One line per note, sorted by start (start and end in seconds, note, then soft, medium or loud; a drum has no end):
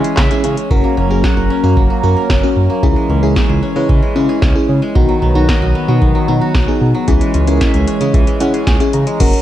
0.00 0.69 E3 medium
0.00 0.76 E3 medium
0.00 0.69 G#3 medium
0.00 0.76 G#3 medium
0.00 0.44 C#4 medium
0.00 0.69 C#4 medium
0.04 0.30 G#4 medium
0.04 closed hi-hat soft
0.17 0.29 C#2 loud
0.17 1.09 E5 medium
0.17 kick loud
0.17 snare loud
0.17 clap loud
0.17 closed hi-hat medium
0.31 0.54 C#4 medium
0.31 0.54 E4 medium
0.31 1.52 G#4 medium
0.31 0.54 G#4 medium
0.31 closed hi-hat medium
0.44 0.56 C#3 loud
0.44 0.97 C#4 medium
0.44 closed hi-hat medium
0.57 closed hi-hat soft
0.71 0.83 F#1 loud
0.71 1.76 F#3 medium
0.71 2.81 F#3 medium
0.71 2.81 A#3 medium
0.71 4.91 C#4 medium
0.71 0.94 C#4 medium
0.71 0.94 F#4 medium
0.71 0.94 A#4 medium
0.71 kick loud
0.84 1.63 A#3 medium
0.97 1.09 F#1 loud
0.97 1.50 C#4 medium
1.10 1.22 F#1 loud
1.10 1.41 C#4 medium
1.10 1.41 F#4 medium
1.10 1.41 G#4 medium
1.10 1.37 A#4 medium
1.24 2.10 F#5 medium
1.24 kick loud
1.24 snare loud
1.37 1.49 F#1 medium
1.37 2.16 A#4 medium
1.50 2.03 C#4 medium
1.64 1.76 F#2 medium
1.64 1.90 A#3 medium
1.64 1.87 C#4 medium
1.64 1.87 F#4 medium
1.64 1.87 A#4 medium
1.77 1.89 F#1 loud
1.77 2.88 F#3 medium
1.77 kick loud
1.90 2.69 A#3 medium
2.03 2.15 F#2 medium
2.03 3.09 C#4 medium
2.03 2.26 C#4 medium
2.03 2.26 F#4 medium
2.03 2.26 A#4 medium
2.17 3.30 A#4 medium
2.30 2.42 F#1 medium
2.30 kick loud
2.30 snare loud
2.43 2.66 C#4 medium
2.43 2.66 F#4 medium
2.43 2.66 A#4 medium
2.56 2.68 F#2 loud
2.70 4.41 A#3 medium
2.83 2.95 C#2 loud
2.83 4.93 E3 medium
2.83 3.88 E3 medium
2.83 4.93 G#3 medium
2.83 3.06 C#4 medium
2.83 3.06 E4 medium
2.83 3.06 G#4 medium
2.83 kick loud
2.96 3.75 G#3 medium
3.10 3.21 C#2 loud
3.10 3.62 C#4 medium
3.23 3.35 C#2 loud
3.23 3.54 C#4 medium
3.23 3.54 E4 medium
3.23 3.49 G#4 medium
3.23 3.54 G#4 medium
3.36 4.28 E5 medium
3.36 kick loud
3.36 snare loud
3.49 3.61 C#2 medium
3.49 4.29 G#4 medium
3.63 4.15 C#4 medium
3.76 3.88 C#3 loud
3.76 4.01 G#3 medium
3.76 3.99 C#4 medium
3.76 3.99 E4 medium
3.76 3.99 B4 medium
3.89 4.01 C#2 loud
3.89 5.00 E3 medium
3.89 kick loud
4.03 4.81 G#3 medium
4.16 4.28 C#3 loud
4.16 4.39 C#4 medium
4.16 5.70 C#4 medium
4.16 4.39 E4 medium
4.16 4.39 G#4 medium
4.29 5.50 G#4 medium
4.42 4.54 C#2 loud
4.42 kick loud
4.42 snare loud
4.55 4.79 C#4 medium
4.55 4.79 E4 medium
4.55 4.79 G#4 medium
4.69 4.81 C#3 loud
4.82 5.00 G#3 medium
4.95 5.07 B1 loud
4.95 7.06 D#3 medium
4.95 6.00 D#3 medium
4.95 7.06 F#3 medium
4.95 7.06 B3 medium
4.95 5.18 B3 medium
4.95 5.18 D#4 medium
4.95 5.18 F#4 medium
4.95 kick loud
5.09 5.87 F#3 medium
5.22 5.34 B1 loud
5.22 5.75 B3 medium
5.35 5.47 B1 loud
5.35 5.66 B3 medium
5.35 5.66 D#4 medium
5.35 5.66 F#4 loud
5.35 5.61 F#4 medium
5.49 6.44 D#5 medium
5.49 kick loud
5.49 snare loud
5.62 5.74 B1 loud
5.62 6.41 F#4 medium
5.75 6.28 B3 medium
5.88 6.00 B2 loud
5.88 6.07 F#3 medium
5.88 6.11 B3 medium
5.88 6.11 D#4 medium
5.88 6.11 F#4 medium
6.02 6.13 B1 loud
6.02 7.13 D#3 medium
6.02 kick loud
6.15 6.93 F#3 medium
6.28 6.40 B2 loud
6.28 7.94 B3 medium
6.28 6.51 B3 medium
6.28 6.51 D#4 medium
6.28 6.51 F#4 loud
6.41 7.71 F#4 medium
6.55 6.67 B1 loud
6.55 kick loud
6.55 snare loud
6.68 6.91 B3 medium
6.68 6.91 D#4 medium
6.68 6.91 G#4 loud
6.81 6.93 B2 loud
6.95 7.13 F#3 medium
7.08 7.20 C#2 loud
7.08 9.18 E3 medium
7.08 8.13 E3 medium
7.08 9.18 G#3 medium
7.08 9.18 C#4 medium
7.08 7.31 C#4 medium
7.08 7.31 E4 medium
7.08 7.31 G#4 loud
7.08 kick loud
7.08 closed hi-hat medium
7.21 8.00 G#3 medium
7.21 closed hi-hat medium
7.34 7.46 C#2 medium
7.34 7.87 C#4 medium
7.34 closed hi-hat medium
7.47 7.60 C#2 loud
7.47 7.78 C#4 medium
7.47 7.78 E4 medium
7.47 7.74 G#4 medium
7.47 7.78 A#4 medium
7.47 closed hi-hat medium
7.61 8.53 E5 medium
7.61 kick loud
7.61 snare loud
7.61 closed hi-hat medium
7.74 7.86 C#2 medium
7.74 8.53 G#4 medium
7.74 closed hi-hat medium
7.87 8.40 C#4 medium
7.87 8.12 C#5 medium
7.87 closed hi-hat medium
8.01 8.13 C#3 loud
8.01 8.26 G#3 medium
8.01 8.24 C#4 medium
8.01 8.24 E4 medium
8.01 8.24 G#4 medium
8.01 closed hi-hat medium
8.14 8.26 C#2 loud
8.14 9.25 E3 medium
8.14 8.39 E5 medium
8.14 kick loud
8.14 closed hi-hat medium
8.27 9.06 G#3 medium
8.27 closed hi-hat medium
8.40 8.53 C#3 loud
8.40 9.42 C#4 medium
8.40 8.64 C#4 medium
8.40 8.64 E4 medium
8.40 8.64 G#4 medium
8.40 8.65 F#5 medium
8.40 closed hi-hat medium
8.54 9.42 G#4 medium
8.54 closed hi-hat soft
8.67 8.79 C#2 loud
8.67 8.92 G#5 medium
8.67 kick loud
8.67 snare loud
8.67 closed hi-hat medium
8.80 9.03 C#4 medium
8.80 9.03 E4 medium
8.80 9.03 G#4 medium
8.80 closed hi-hat medium
8.93 9.06 C#3 loud
8.93 9.18 A#5 medium
8.93 closed hi-hat medium
9.07 9.25 G#3 medium
9.07 closed hi-hat soft
9.20 9.32 F#1 loud
9.20 9.42 F#3 medium
9.20 9.42 C#4 medium
9.20 9.42 F#4 medium
9.20 9.42 A#4 loud
9.20 kick loud
9.20 closed hi-hat medium
9.20 crash loud
9.33 closed hi-hat medium